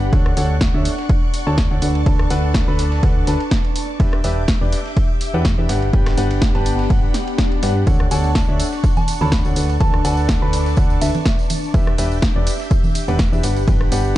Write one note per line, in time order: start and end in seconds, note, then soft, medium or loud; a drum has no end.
0.00 0.11 G1 loud
0.00 0.81 B3 medium
0.00 0.10 D4 medium
0.00 0.10 G4 medium
0.00 0.11 G4 medium
0.00 0.13 G4 medium
0.00 0.10 B4 medium
0.00 0.10 F#5 medium
0.00 0.11 F#5 medium
0.00 2.70 F#5 medium
0.00 0.11 B5 loud
0.12 0.35 D2 medium
0.12 0.30 D4 medium
0.12 6.57 D4 medium
0.12 0.30 A4 medium
0.12 0.30 C#5 medium
0.12 3.96 D5 medium
0.12 0.30 F#5 medium
0.12 3.96 C#6 medium
0.12 1.80 F#6 medium
0.12 kick loud
0.12 ride medium
0.26 cross-stick medium
0.31 2.70 C#6 medium
0.37 0.72 D2 loud
0.37 0.54 D4 medium
0.37 0.54 A4 medium
0.37 0.54 C#5 medium
0.37 0.54 F#5 loud
0.37 open hi-hat loud
0.37 ride medium
0.61 kick loud
0.61 snare loud
0.61 ride medium
0.74 0.88 D2 loud
0.74 0.90 D4 medium
0.74 0.90 A4 medium
0.74 0.90 C#5 medium
0.74 0.90 E5 medium
0.85 open hi-hat loud
0.85 ride medium
0.98 snare medium
1.09 kick loud
1.09 ride medium
1.34 open hi-hat loud
1.34 ride medium
1.47 1.68 D2 loud
1.47 1.56 D4 medium
1.47 1.56 A4 medium
1.47 1.56 C#5 medium
1.47 1.56 A5 loud
1.58 kick loud
1.58 snare loud
1.58 ride medium
1.71 1.80 D2 loud
1.71 1.80 D4 medium
1.71 1.80 A4 medium
1.71 1.80 C#5 medium
1.71 1.80 F#5 medium
1.82 2.04 D2 loud
1.82 1.99 D4 medium
1.82 1.99 A4 medium
1.82 1.99 B4 medium
1.82 1.99 F#5 medium
1.82 3.98 A5 medium
1.82 open hi-hat loud
1.82 ride medium
1.95 ride soft
2.06 2.28 D2 loud
2.06 2.28 D4 medium
2.06 2.28 A4 medium
2.06 2.28 B4 medium
2.06 2.28 A5 medium
2.06 kick loud
2.06 ride medium
2.19 cross-stick medium
2.24 4.68 B4 medium
2.30 2.65 D2 loud
2.30 2.65 D4 loud
2.30 2.65 A4 medium
2.30 2.65 B4 medium
2.30 2.65 F#5 loud
2.30 open hi-hat loud
2.30 ride medium
2.53 4.68 A5 medium
2.53 kick loud
2.53 snare loud
2.53 ride medium
2.68 3.01 D2 loud
2.68 3.00 D4 loud
2.68 3.00 A4 medium
2.68 3.00 B4 medium
2.68 3.00 B5 loud
2.79 snare medium
2.79 open hi-hat loud
2.79 ride medium
2.92 snare medium
3.03 3.25 D2 medium
3.03 3.25 D4 medium
3.03 3.25 A4 medium
3.03 3.25 B4 medium
3.03 3.25 F#5 medium
3.03 kick loud
3.03 ride medium
3.27 3.36 D2 loud
3.27 3.39 D4 medium
3.27 3.39 A4 medium
3.27 3.39 B4 medium
3.27 3.39 A5 medium
3.27 snare soft
3.27 open hi-hat loud
3.27 ride medium
3.40 ride soft
3.51 kick loud
3.51 snare loud
3.51 ride medium
3.65 ride soft
3.76 open hi-hat loud
3.76 ride medium
4.00 4.22 E1 loud
4.00 4.17 D4 medium
4.00 4.17 G4 medium
4.00 4.17 B4 medium
4.00 4.17 E5 medium
4.00 5.68 E5 medium
4.00 5.68 D6 medium
4.00 5.68 G6 loud
4.00 kick loud
4.00 ride medium
4.13 cross-stick medium
4.22 4.59 E1 medium
4.22 4.41 D4 loud
4.22 7.87 G4 medium
4.22 4.41 G4 medium
4.22 4.41 B4 medium
4.22 4.41 E5 loud
4.22 open hi-hat loud
4.22 ride medium
4.48 kick loud
4.48 snare loud
4.48 ride medium
4.55 6.57 E5 medium
4.61 4.75 E1 loud
4.61 4.77 D4 medium
4.61 4.77 G4 medium
4.61 4.77 B4 medium
4.61 4.77 D5 medium
4.72 snare soft
4.72 open hi-hat loud
4.72 ride medium
4.86 snare medium
4.97 kick loud
4.97 ride medium
5.21 open hi-hat loud
5.21 ride medium
5.34 5.56 E2 loud
5.34 5.44 D4 medium
5.34 5.44 G4 medium
5.34 5.44 B4 medium
5.34 5.44 F#5 loud
5.45 kick loud
5.45 snare loud
5.45 ride medium
5.58 5.67 E2 loud
5.58 5.68 D4 medium
5.58 5.68 G4 medium
5.58 5.68 B4 medium
5.58 5.68 E5 medium
5.69 5.91 G1 loud
5.69 8.55 B3 medium
5.69 5.87 D4 medium
5.69 7.85 G4 medium
5.69 5.87 G4 medium
5.69 5.87 B4 medium
5.69 7.85 F#5 medium
5.69 5.87 F#5 medium
5.69 7.85 B5 medium
5.69 snare loud
5.69 open hi-hat loud
5.69 ride medium
5.82 ride soft
5.93 6.15 G1 loud
5.93 6.15 D4 medium
5.93 6.15 G4 medium
5.93 6.15 B4 medium
5.93 6.15 G5 medium
5.93 kick loud
5.93 ride medium
6.06 cross-stick medium
6.06 snare loud
6.06 ride medium
6.12 10.23 F#5 medium
6.18 6.52 G1 loud
6.18 6.52 D4 loud
6.18 6.52 G4 loud
6.18 6.52 B4 medium
6.18 6.52 F#5 loud
6.18 open hi-hat loud
6.18 ride soft
6.31 ride medium
6.42 kick loud
6.42 snare loud
6.42 ride medium
6.55 6.88 G1 medium
6.55 6.88 D4 loud
6.55 6.88 G4 medium
6.55 6.88 B4 medium
6.55 6.88 A5 loud
6.55 ride soft
6.66 open hi-hat loud
6.66 ride medium
6.79 snare medium
6.90 7.09 G1 loud
6.90 7.12 D4 medium
6.90 7.12 G4 medium
6.90 7.12 B4 medium
6.90 7.12 F#5 loud
6.90 kick loud
6.90 ride medium
6.90 swell medium
7.14 snare medium
7.14 snare soft
7.14 open hi-hat loud
7.14 ride medium
7.28 ride soft
7.38 kick loud
7.38 snare loud
7.38 ride medium
7.52 ride soft
7.63 7.85 G2 medium
7.63 7.84 D4 medium
7.63 7.84 G4 medium
7.63 7.84 B4 medium
7.63 7.84 F#5 medium
7.63 snare loud
7.63 open hi-hat loud
7.63 ride medium
7.87 8.09 D2 loud
7.87 14.18 D4 medium
7.87 8.04 D4 medium
7.87 8.04 A4 medium
7.87 8.04 C#5 medium
7.87 9.55 D5 medium
7.87 8.04 F#5 medium
7.87 11.70 C#6 medium
7.87 9.55 F#6 medium
7.87 kick loud
7.87 ride medium
7.87 tambourine soft
7.87 high conga loud
8.00 10.44 C#6 medium
8.00 cross-stick medium
8.11 8.46 D2 loud
8.11 8.29 D4 medium
8.11 8.28 A4 medium
8.11 8.29 C#5 medium
8.11 8.29 F#5 loud
8.11 8.60 A5 loud
8.11 open hi-hat loud
8.11 ride medium
8.11 tambourine medium
8.24 tambourine soft
8.35 kick loud
8.35 snare loud
8.35 ride medium
8.35 tambourine soft
8.49 8.62 D2 loud
8.49 8.65 D4 medium
8.49 8.65 A4 medium
8.49 8.65 C#5 medium
8.49 8.65 E5 medium
8.60 open hi-hat loud
8.60 ride medium
8.60 tambourine loud
8.73 snare medium
8.73 tambourine soft
8.84 kick loud
8.84 ride medium
8.84 tambourine medium
8.97 9.10 A5 medium
8.97 tambourine soft
8.97 high conga medium
9.08 open hi-hat loud
9.08 ride medium
9.08 tambourine loud
9.21 9.43 D2 loud
9.21 9.31 D4 medium
9.21 9.31 A4 medium
9.21 9.31 C#5 medium
9.21 9.31 A5 loud
9.21 9.35 B5 medium
9.21 tambourine soft
9.21 high conga loud
9.32 kick loud
9.32 snare loud
9.32 ride medium
9.32 tambourine medium
9.45 9.54 D2 medium
9.45 9.55 D4 medium
9.45 9.55 A4 medium
9.45 9.55 C#5 medium
9.45 9.55 F#5 medium
9.45 tambourine soft
9.56 9.78 D2 loud
9.56 9.74 D4 medium
9.56 9.74 A4 medium
9.56 9.74 B4 medium
9.56 11.72 D5 medium
9.56 9.74 F#5 medium
9.56 11.72 A5 medium
9.56 open hi-hat loud
9.56 ride medium
9.56 tambourine loud
9.69 ride soft
9.69 tambourine soft
9.79 10.02 D2 loud
9.79 10.02 D4 medium
9.79 10.02 A4 medium
9.79 12.42 B4 medium
9.79 10.02 B4 medium
9.79 9.96 A5 medium
9.79 10.02 A5 medium
9.79 kick loud
9.79 ride medium
9.79 tambourine medium
9.79 high conga medium
9.94 cross-stick medium
10.05 10.39 D2 loud
10.05 10.39 D4 loud
10.05 10.39 A4 medium
10.05 10.39 B4 medium
10.05 10.39 F#5 loud
10.05 10.20 A5 medium
10.05 open hi-hat loud
10.05 ride medium
10.05 tambourine medium
10.17 tambourine soft
10.26 12.42 A5 medium
10.26 kick loud
10.26 snare loud
10.26 ride medium
10.26 tambourine medium
10.42 10.75 D2 loud
10.42 10.75 D4 loud
10.42 10.75 A4 medium
10.42 10.75 B4 medium
10.42 10.75 B5 loud
10.53 snare medium
10.53 open hi-hat loud
10.53 ride medium
10.53 tambourine medium
10.66 snare medium
10.66 tambourine soft
10.77 10.99 D2 loud
10.77 10.99 D4 medium
10.77 10.99 A4 medium
10.77 10.99 B4 medium
10.77 10.99 F#5 medium
10.77 kick loud
10.77 ride medium
10.77 tambourine medium
10.90 tambourine soft
11.01 11.10 D2 loud
11.01 11.13 D4 medium
11.01 11.13 A4 medium
11.01 11.13 B4 medium
11.01 11.50 E5 medium
11.01 11.13 A5 medium
11.01 snare soft
11.01 open hi-hat loud
11.01 ride medium
11.01 tambourine loud
11.15 ride soft
11.15 tambourine soft
11.15 high conga medium
11.26 kick loud
11.26 snare loud
11.26 ride medium
11.26 tambourine medium
11.39 ride soft
11.39 tambourine soft
11.50 open hi-hat loud
11.50 ride medium
11.50 tambourine loud
11.50 high conga medium
11.64 tambourine soft
11.74 11.96 E1 loud
11.74 11.91 D4 medium
11.74 11.91 G4 medium
11.74 11.91 B4 medium
11.74 13.42 E5 medium
11.74 11.91 E5 loud
11.74 13.42 D6 medium
11.74 13.42 G6 medium
11.74 kick loud
11.74 ride medium
11.74 tambourine medium
11.74 high conga medium
11.87 cross-stick medium
11.92 14.18 G4 medium
11.98 12.33 E1 loud
11.98 12.16 D4 loud
11.98 12.16 G4 medium
11.98 12.16 B4 medium
11.98 12.16 E5 loud
11.98 open hi-hat loud
11.98 ride medium
11.98 tambourine loud
12.04 14.18 E5 medium
12.12 tambourine soft
12.22 kick loud
12.22 snare loud
12.22 ride medium
12.22 tambourine medium
12.36 12.49 E1 loud
12.36 12.52 D4 medium
12.36 12.52 G4 medium
12.36 12.52 B4 medium
12.36 12.52 D5 medium
12.47 open hi-hat loud
12.47 ride medium
12.47 tambourine loud
12.60 snare medium
12.60 tambourine soft
12.71 kick loud
12.71 ride medium
12.71 tambourine medium
12.84 tambourine soft
12.84 high conga medium
12.95 open hi-hat loud
12.95 ride medium
12.95 tambourine loud
13.08 13.30 E1 loud
13.08 13.18 D4 loud
13.08 13.18 G4 medium
13.08 13.18 B4 medium
13.08 13.18 F#5 loud
13.08 tambourine soft
13.08 high conga medium
13.19 kick loud
13.19 snare loud
13.19 ride medium
13.19 tambourine medium
13.32 13.41 E2 loud
13.32 13.42 D4 medium
13.32 13.42 G4 medium
13.32 13.42 B4 medium
13.32 13.42 E5 medium
13.32 tambourine soft
13.43 13.65 G1 loud
13.43 14.18 B3 medium
13.43 13.61 D4 medium
13.43 13.61 G4 medium
13.43 14.18 G4 medium
13.43 13.61 B4 medium
13.43 13.61 F#5 medium
13.43 14.18 F#5 medium
13.43 14.18 B5 medium
13.43 open hi-hat loud
13.43 ride medium
13.43 tambourine medium
13.56 ride soft
13.56 tambourine soft
13.68 13.90 G1 loud
13.68 13.89 D4 medium
13.68 13.89 G4 medium
13.68 13.89 B4 medium
13.68 13.89 G5 medium
13.68 kick loud
13.68 ride loud
13.68 tambourine medium
13.68 high conga loud
13.80 14.18 F#5 medium
13.80 cross-stick medium
13.92 14.18 G1 loud
13.92 14.18 D4 loud
13.92 14.18 G4 medium
13.92 14.18 B4 medium
13.92 14.18 F#5 loud
13.92 open hi-hat loud
13.92 ride medium
13.92 tambourine loud
14.05 tambourine soft